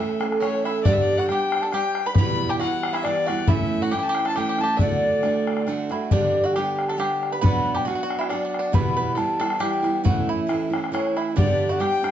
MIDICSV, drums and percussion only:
0, 0, Header, 1, 2, 480
1, 0, Start_track
1, 0, Tempo, 437637
1, 939, Time_signature, 3, 2, 24, 8
1, 13282, End_track
2, 0, Start_track
2, 0, Title_t, "Bodhran"
2, 227, Note_on_c, 9, 64, 77
2, 337, Note_off_c, 9, 64, 0
2, 355, Note_on_c, 9, 64, 61
2, 464, Note_off_c, 9, 64, 0
2, 466, Note_on_c, 9, 64, 68
2, 575, Note_off_c, 9, 64, 0
2, 718, Note_on_c, 9, 64, 52
2, 827, Note_off_c, 9, 64, 0
2, 937, Note_on_c, 9, 64, 90
2, 1047, Note_off_c, 9, 64, 0
2, 1070, Note_on_c, 9, 64, 28
2, 1180, Note_off_c, 9, 64, 0
2, 1413, Note_on_c, 9, 64, 53
2, 1523, Note_off_c, 9, 64, 0
2, 1669, Note_on_c, 9, 64, 79
2, 1778, Note_off_c, 9, 64, 0
2, 1892, Note_on_c, 9, 64, 65
2, 2002, Note_off_c, 9, 64, 0
2, 2139, Note_on_c, 9, 64, 64
2, 2249, Note_off_c, 9, 64, 0
2, 2363, Note_on_c, 9, 64, 99
2, 2473, Note_off_c, 9, 64, 0
2, 2500, Note_on_c, 9, 64, 27
2, 2610, Note_off_c, 9, 64, 0
2, 2863, Note_on_c, 9, 64, 58
2, 2973, Note_off_c, 9, 64, 0
2, 3108, Note_on_c, 9, 64, 87
2, 3218, Note_off_c, 9, 64, 0
2, 3229, Note_on_c, 9, 64, 72
2, 3339, Note_off_c, 9, 64, 0
2, 3343, Note_on_c, 9, 64, 76
2, 3453, Note_off_c, 9, 64, 0
2, 3597, Note_on_c, 9, 64, 65
2, 3707, Note_off_c, 9, 64, 0
2, 3813, Note_on_c, 9, 64, 96
2, 3922, Note_off_c, 9, 64, 0
2, 3943, Note_on_c, 9, 64, 27
2, 4053, Note_off_c, 9, 64, 0
2, 4305, Note_on_c, 9, 64, 53
2, 4415, Note_off_c, 9, 64, 0
2, 4548, Note_on_c, 9, 64, 71
2, 4658, Note_off_c, 9, 64, 0
2, 4669, Note_on_c, 9, 64, 63
2, 4779, Note_off_c, 9, 64, 0
2, 4779, Note_on_c, 9, 64, 65
2, 4889, Note_off_c, 9, 64, 0
2, 5028, Note_on_c, 9, 64, 52
2, 5138, Note_off_c, 9, 64, 0
2, 5255, Note_on_c, 9, 64, 83
2, 5365, Note_off_c, 9, 64, 0
2, 5386, Note_on_c, 9, 64, 25
2, 5496, Note_off_c, 9, 64, 0
2, 5737, Note_on_c, 9, 64, 53
2, 5847, Note_off_c, 9, 64, 0
2, 6004, Note_on_c, 9, 64, 68
2, 6106, Note_off_c, 9, 64, 0
2, 6106, Note_on_c, 9, 64, 56
2, 6216, Note_off_c, 9, 64, 0
2, 6226, Note_on_c, 9, 64, 53
2, 6335, Note_off_c, 9, 64, 0
2, 6480, Note_on_c, 9, 64, 50
2, 6590, Note_off_c, 9, 64, 0
2, 6704, Note_on_c, 9, 64, 85
2, 6813, Note_off_c, 9, 64, 0
2, 6841, Note_on_c, 9, 64, 23
2, 6951, Note_off_c, 9, 64, 0
2, 7193, Note_on_c, 9, 64, 55
2, 7302, Note_off_c, 9, 64, 0
2, 7443, Note_on_c, 9, 64, 63
2, 7553, Note_off_c, 9, 64, 0
2, 7560, Note_on_c, 9, 64, 55
2, 7670, Note_off_c, 9, 64, 0
2, 7676, Note_on_c, 9, 64, 65
2, 7785, Note_off_c, 9, 64, 0
2, 7929, Note_on_c, 9, 64, 49
2, 8039, Note_off_c, 9, 64, 0
2, 8163, Note_on_c, 9, 64, 89
2, 8273, Note_off_c, 9, 64, 0
2, 8295, Note_on_c, 9, 64, 25
2, 8405, Note_off_c, 9, 64, 0
2, 8643, Note_on_c, 9, 64, 48
2, 8753, Note_off_c, 9, 64, 0
2, 8888, Note_on_c, 9, 64, 70
2, 8998, Note_off_c, 9, 64, 0
2, 9006, Note_on_c, 9, 64, 66
2, 9107, Note_off_c, 9, 64, 0
2, 9107, Note_on_c, 9, 64, 65
2, 9217, Note_off_c, 9, 64, 0
2, 9371, Note_on_c, 9, 64, 57
2, 9481, Note_off_c, 9, 64, 0
2, 9586, Note_on_c, 9, 64, 98
2, 9696, Note_off_c, 9, 64, 0
2, 9709, Note_on_c, 9, 64, 27
2, 9818, Note_off_c, 9, 64, 0
2, 10063, Note_on_c, 9, 64, 53
2, 10173, Note_off_c, 9, 64, 0
2, 10323, Note_on_c, 9, 64, 75
2, 10422, Note_off_c, 9, 64, 0
2, 10422, Note_on_c, 9, 64, 67
2, 10532, Note_off_c, 9, 64, 0
2, 10535, Note_on_c, 9, 64, 74
2, 10645, Note_off_c, 9, 64, 0
2, 10796, Note_on_c, 9, 64, 58
2, 10906, Note_off_c, 9, 64, 0
2, 11031, Note_on_c, 9, 64, 91
2, 11141, Note_off_c, 9, 64, 0
2, 11163, Note_on_c, 9, 64, 32
2, 11272, Note_off_c, 9, 64, 0
2, 11508, Note_on_c, 9, 64, 72
2, 11618, Note_off_c, 9, 64, 0
2, 11774, Note_on_c, 9, 64, 80
2, 11884, Note_off_c, 9, 64, 0
2, 11888, Note_on_c, 9, 64, 61
2, 11998, Note_off_c, 9, 64, 0
2, 12006, Note_on_c, 9, 64, 73
2, 12115, Note_off_c, 9, 64, 0
2, 12249, Note_on_c, 9, 64, 57
2, 12359, Note_off_c, 9, 64, 0
2, 12482, Note_on_c, 9, 64, 88
2, 12592, Note_off_c, 9, 64, 0
2, 12604, Note_on_c, 9, 64, 28
2, 12714, Note_off_c, 9, 64, 0
2, 12956, Note_on_c, 9, 64, 56
2, 13066, Note_off_c, 9, 64, 0
2, 13207, Note_on_c, 9, 64, 77
2, 13282, Note_off_c, 9, 64, 0
2, 13282, End_track
0, 0, End_of_file